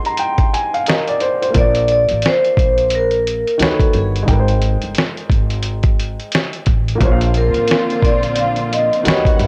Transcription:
Already playing: upright piano G#3 D#4 G#4 A#4 C5 C6, vibraphone G#4
0.05 upright piano A#5, closed hi-hat
0.17 upright piano G5, closed hi-hat
0.38 kick, closed hi-hat
0.54 upright piano G#5, closed hi-hat
0.74 upright piano F5, closed hi-hat
0.86 upright piano A#4 D#5, snare, closed hi-hat
1.08 upright piano D5, closed hi-hat
1.20 upright piano C5, closed hi-hat
1.42 upright piano C5, closed hi-hat
1.50 upright piano A#3 F4
1.54 upright bass A#1, upright piano A#4 C5, vibraphone D5, kick, closed hi-hat
1.60 upright piano D5
1.75 closed hi-hat
1.88 vibraphone D5, closed hi-hat
2.09 upright bass A1, closed hi-hat
2.22 snare, closed hi-hat
2.27 vibraphone C5
2.44 closed hi-hat
2.57 upright bass A#1, kick, closed hi-hat
2.78 closed hi-hat
2.89 vibraphone C5, closed hi-hat
2.95 vibraphone A#4
3.11 closed hi-hat
3.27 closed hi-hat
3.47 closed hi-hat
3.58 upright bass D#2, upright piano D#3 D#4 F#4, closed hi-hat
3.62 vibraphone A4, upright piano B4 C#5, snare
3.80 kick, closed hi-hat
3.93 upright bass G1, closed hi-hat
3.98 vibraphone G#4
4.16 closed hi-hat
4.23 upright piano G#3 D#4
4.28 upright bass G#1, upright piano A#4 G5, kick, closed hi-hat
4.33 upright piano B4
4.39 upright piano C5
4.48 closed hi-hat
4.62 closed hi-hat
4.82 upright bass G1, closed hi-hat
4.95 snare, closed hi-hat
5.17 closed hi-hat
5.30 upright bass G#1, kick, closed hi-hat
5.50 closed hi-hat
5.63 closed hi-hat
5.83 kick, closed hi-hat
6.00 closed hi-hat
6.20 closed hi-hat
6.32 snare, closed hi-hat
6.53 closed hi-hat
6.66 upright bass A1, kick, closed hi-hat
6.88 closed hi-hat
6.95 upright piano A#3 F4
7.00 upright bass A#1, string section D3 F3 A#3 C4 F4, upright piano A#4 C5, kick, closed hi-hat
7.05 upright piano C#5
7.12 upright piano F5
7.21 closed hi-hat
7.34 vibraphone A#4, closed hi-hat
7.54 upright bass A1, closed hi-hat
7.68 snare, closed hi-hat
7.90 closed hi-hat
8.02 upright bass A#1, vibraphone D5, kick, closed hi-hat
8.23 closed hi-hat
8.36 vibraphone F5, closed hi-hat
8.56 closed hi-hat
8.73 vibraphone D#5, closed hi-hat
8.93 closed hi-hat
9.03 upright bass D#2, upright piano D#3 D#4 F#4 G4 B4, string section D#3 G3 B3 C#4 F#5, closed hi-hat
9.08 upright piano C#5, snare
9.25 kick, closed hi-hat
9.39 upright bass G1, vibraphone E5, closed hi-hat

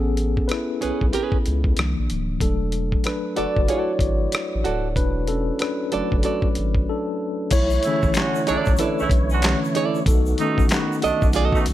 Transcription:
Already playing: sub bass A1, tine electric piano B3 C#4 G#4 A4
0.17 closed hi-hat
0.37 kick
0.48 tine electric piano E4 B4, muted nylon-string guitar stroke, cross-stick, closed hi-hat
0.81 sub bass B1, nylon-string guitar C#4 G#4 B4, closed hi-hat
1.01 sub bass B1, kick
1.13 nylon-string guitar C#4 G#4 B4, closed hi-hat
1.32 kick
1.46 sub bass C#2, closed hi-hat
1.64 kick
1.77 sub bass C2, tine electric piano D#3 F3 A#3 D4, cross-stick, closed hi-hat
1.99 sub bass A#1
2.10 sub bass D1, closed hi-hat
2.40 sub bass E1, tine electric piano F#3 A3 D4 A4, kick, closed hi-hat
2.72 closed hi-hat
2.92 kick
3.04 tine electric piano D4 B4, muted nylon-string guitar stroke, cross-stick, closed hi-hat
3.36 sub bass F#1, nylon-string guitar F#4 A4 D5, tine electric piano F#4 D5, closed hi-hat
3.56 sub bass F#1, kick
3.68 tine electric piano E4 C#5, nylon-string guitar F#4 A4 D5, closed hi-hat
3.99 sub bass G#1, kick, closed hi-hat
4.32 muted nylon-string guitar stroke, cross-stick, closed hi-hat
4.55 sub bass A1
4.64 sub bass D1, nylon-string guitar F#4 A4 D5, closed hi-hat
4.96 sub bass E1, tine electric piano D4 B4, kick, closed hi-hat
5.27 tine electric piano C#4 A4, closed hi-hat
5.59 tine electric piano D4 B4, muted nylon-string guitar stroke, cross-stick, closed hi-hat
5.92 sub bass F#1, tine electric piano F#3 A3 D4, nylon-string guitar F#4 A4 D5, closed hi-hat
6.12 sub bass F#1, kick
6.23 nylon-string guitar F#4 A4 D5, closed hi-hat
6.42 kick
6.55 sub bass G#1, closed hi-hat
6.75 kick
6.89 tine electric piano D4 A4
7.50 sub bass B1, tonewheel organ E3 A3 E4 C#5, tine electric piano E4 C#5, kick, closed hi-hat, crash, shaker
7.70 shaker
7.83 horn section C#3 A3 E4, tine electric piano D3 E3 A3, closed hi-hat, shaker
7.87 tine electric piano C#4
8.03 sub bass A1, kick, shaker
8.14 horn section D3 C#4 F#4, finger snap, muted nylon-string guitar stroke, snare, clap, closed hi-hat, shaker
8.35 shaker
8.47 sub bass B1, horn section A2 F#3 D4, nylon-string guitar E4 A4 D5, closed hi-hat, shaker
8.65 sub bass B1, kick, shaker
8.77 nylon-string guitar E4 A4, tine electric piano B4, closed hi-hat, shaker
8.81 tine electric piano D4, nylon-string guitar D5
8.98 sub bass B1, horn section C#3 A3 E4, shaker
9.10 sub bass B1, kick, closed hi-hat, shaker
9.30 horn section D3 C#4 F#4, shaker
9.42 tine electric piano D3 E3 A3 C#4, finger snap, muted nylon-string guitar stroke, snare, clap, closed hi-hat, shaker
9.65 shaker
9.75 nylon-string guitar E4 A4 D5, closed hi-hat
9.95 shaker
10.04 sub bass B1, tonewheel organ D#3 A3 B3 F#4, tine electric piano A4, kick, closed hi-hat, shaker
10.10 tine electric piano D#4
10.26 shaker
10.38 horn section B2 A3 D#4, tine electric piano D#3 A3 C#4, closed hi-hat, shaker
10.58 sub bass A1, kick, shaker
10.69 horn section D#3 B3 F#4, finger snap, muted nylon-string guitar stroke, snare, clap, closed hi-hat, shaker
10.92 shaker
11.02 sub bass B1, horn section A3 D4, nylon-string guitar F#4 A4 D#5, closed hi-hat, shaker
11.22 sub bass B1, kick, shaker
11.33 nylon-string guitar F#4 A4 D#5, closed hi-hat, shaker
11.52 horn section B2 A3 D#4, kick, shaker
11.66 sub bass B1, closed hi-hat, shaker

